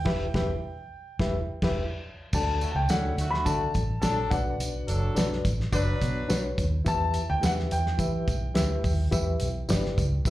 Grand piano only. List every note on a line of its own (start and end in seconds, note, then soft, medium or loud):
0.00 1.72 G5 medium
2.34 2.70 A5 medium
2.72 2.89 G5 medium
2.72 2.76 A5 medium
2.90 3.34 F#5 medium
3.31 3.46 B5 medium
3.45 4.00 A5 loud
4.02 4.32 A5 medium
4.30 4.84 F#5 medium
6.88 7.31 A5 loud
7.30 7.43 G5 medium
7.45 7.51 F#5 medium
7.72 10.30 G5 medium